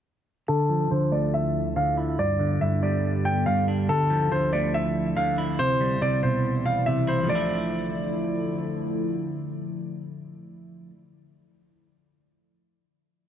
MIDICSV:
0, 0, Header, 1, 4, 480
1, 0, Start_track
1, 0, Tempo, 425532
1, 547, Time_signature, 4, 2, 24, 8
1, 14983, End_track
2, 0, Start_track
2, 0, Title_t, "Grand piano"
2, 0, Program_c, 0, 0
2, 544, Note_on_c, 0, 69, 96
2, 997, Note_off_c, 0, 69, 0
2, 1026, Note_on_c, 0, 72, 76
2, 1228, Note_off_c, 0, 72, 0
2, 1263, Note_on_c, 0, 74, 77
2, 1467, Note_off_c, 0, 74, 0
2, 1510, Note_on_c, 0, 76, 83
2, 1959, Note_off_c, 0, 76, 0
2, 1989, Note_on_c, 0, 77, 88
2, 2190, Note_off_c, 0, 77, 0
2, 2470, Note_on_c, 0, 74, 102
2, 2920, Note_off_c, 0, 74, 0
2, 2946, Note_on_c, 0, 76, 79
2, 3148, Note_off_c, 0, 76, 0
2, 3189, Note_on_c, 0, 74, 73
2, 3639, Note_off_c, 0, 74, 0
2, 3667, Note_on_c, 0, 79, 79
2, 3869, Note_off_c, 0, 79, 0
2, 3903, Note_on_c, 0, 77, 77
2, 4107, Note_off_c, 0, 77, 0
2, 4389, Note_on_c, 0, 69, 94
2, 4839, Note_off_c, 0, 69, 0
2, 4869, Note_on_c, 0, 72, 81
2, 5070, Note_off_c, 0, 72, 0
2, 5106, Note_on_c, 0, 74, 75
2, 5308, Note_off_c, 0, 74, 0
2, 5350, Note_on_c, 0, 76, 79
2, 5799, Note_off_c, 0, 76, 0
2, 5827, Note_on_c, 0, 77, 79
2, 6029, Note_off_c, 0, 77, 0
2, 6306, Note_on_c, 0, 72, 101
2, 6757, Note_off_c, 0, 72, 0
2, 6789, Note_on_c, 0, 74, 88
2, 6990, Note_off_c, 0, 74, 0
2, 7026, Note_on_c, 0, 72, 75
2, 7478, Note_off_c, 0, 72, 0
2, 7508, Note_on_c, 0, 77, 77
2, 7709, Note_off_c, 0, 77, 0
2, 7741, Note_on_c, 0, 76, 80
2, 7945, Note_off_c, 0, 76, 0
2, 7988, Note_on_c, 0, 72, 77
2, 8190, Note_off_c, 0, 72, 0
2, 8227, Note_on_c, 0, 74, 87
2, 9622, Note_off_c, 0, 74, 0
2, 14983, End_track
3, 0, Start_track
3, 0, Title_t, "Analog synth pad"
3, 0, Program_c, 1, 89
3, 547, Note_on_c, 1, 38, 82
3, 547, Note_on_c, 1, 64, 76
3, 548, Note_on_c, 1, 50, 75
3, 548, Note_on_c, 1, 65, 91
3, 2447, Note_off_c, 1, 38, 0
3, 2448, Note_off_c, 1, 50, 0
3, 2448, Note_off_c, 1, 64, 0
3, 2448, Note_off_c, 1, 65, 0
3, 2464, Note_on_c, 1, 43, 78
3, 2465, Note_on_c, 1, 50, 75
3, 2465, Note_on_c, 1, 59, 74
3, 2465, Note_on_c, 1, 67, 89
3, 4366, Note_off_c, 1, 43, 0
3, 4366, Note_off_c, 1, 59, 0
3, 4367, Note_off_c, 1, 67, 0
3, 4385, Note_on_c, 1, 38, 82
3, 4385, Note_on_c, 1, 53, 76
3, 4386, Note_on_c, 1, 64, 91
3, 6268, Note_off_c, 1, 50, 0
3, 6287, Note_off_c, 1, 38, 0
3, 6287, Note_off_c, 1, 53, 0
3, 6287, Note_off_c, 1, 64, 0
3, 6308, Note_on_c, 1, 52, 76
3, 6308, Note_on_c, 1, 55, 75
3, 6308, Note_on_c, 1, 64, 91
3, 6309, Note_on_c, 1, 36, 80
3, 8208, Note_off_c, 1, 52, 0
3, 8208, Note_off_c, 1, 55, 0
3, 8208, Note_off_c, 1, 64, 0
3, 8209, Note_off_c, 1, 36, 0
3, 8228, Note_on_c, 1, 53, 90
3, 8228, Note_on_c, 1, 57, 75
3, 8228, Note_on_c, 1, 64, 75
3, 8229, Note_on_c, 1, 50, 83
3, 12363, Note_off_c, 1, 53, 0
3, 12363, Note_off_c, 1, 57, 0
3, 12363, Note_off_c, 1, 64, 0
3, 12364, Note_off_c, 1, 50, 0
3, 14983, End_track
4, 0, Start_track
4, 0, Title_t, "Clean electric guitar"
4, 0, Program_c, 2, 27
4, 547, Note_on_c, 2, 50, 87
4, 782, Note_on_c, 2, 53, 75
4, 1012, Note_off_c, 2, 50, 0
4, 1026, Note_on_c, 2, 50, 86
4, 1258, Note_on_c, 2, 57, 81
4, 1972, Note_off_c, 2, 50, 0
4, 1981, Note_off_c, 2, 53, 0
4, 1986, Note_on_c, 2, 50, 72
4, 2228, Note_on_c, 2, 64, 84
4, 2462, Note_off_c, 2, 57, 0
4, 2465, Note_on_c, 2, 43, 89
4, 2466, Note_off_c, 2, 50, 0
4, 2467, Note_off_c, 2, 64, 0
4, 2700, Note_on_c, 2, 50, 76
4, 2934, Note_off_c, 2, 43, 0
4, 2948, Note_on_c, 2, 43, 84
4, 3190, Note_on_c, 2, 55, 80
4, 3903, Note_off_c, 2, 50, 0
4, 3905, Note_off_c, 2, 43, 0
4, 3918, Note_on_c, 2, 43, 71
4, 4152, Note_on_c, 2, 62, 84
4, 4386, Note_on_c, 2, 50, 96
4, 4388, Note_off_c, 2, 55, 0
4, 4389, Note_off_c, 2, 62, 0
4, 4392, Note_off_c, 2, 43, 0
4, 4626, Note_on_c, 2, 53, 80
4, 4859, Note_off_c, 2, 50, 0
4, 4873, Note_on_c, 2, 50, 81
4, 5110, Note_on_c, 2, 57, 85
4, 5812, Note_off_c, 2, 50, 0
4, 5821, Note_off_c, 2, 53, 0
4, 5825, Note_on_c, 2, 50, 77
4, 6069, Note_on_c, 2, 64, 82
4, 6305, Note_on_c, 2, 48, 91
4, 6306, Note_off_c, 2, 50, 0
4, 6308, Note_off_c, 2, 57, 0
4, 6308, Note_off_c, 2, 64, 0
4, 6550, Note_on_c, 2, 55, 77
4, 6772, Note_off_c, 2, 48, 0
4, 6786, Note_on_c, 2, 48, 82
4, 7024, Note_on_c, 2, 47, 76
4, 7743, Note_off_c, 2, 48, 0
4, 7748, Note_off_c, 2, 55, 0
4, 7756, Note_on_c, 2, 48, 80
4, 7980, Note_on_c, 2, 64, 83
4, 8158, Note_on_c, 2, 53, 81
4, 8204, Note_on_c, 2, 57, 74
4, 8223, Note_off_c, 2, 64, 0
4, 8225, Note_off_c, 2, 47, 0
4, 8232, Note_off_c, 2, 48, 0
4, 8249, Note_on_c, 2, 62, 75
4, 8294, Note_on_c, 2, 64, 94
4, 12294, Note_off_c, 2, 53, 0
4, 12339, Note_off_c, 2, 57, 0
4, 12384, Note_off_c, 2, 62, 0
4, 12429, Note_off_c, 2, 64, 0
4, 14983, End_track
0, 0, End_of_file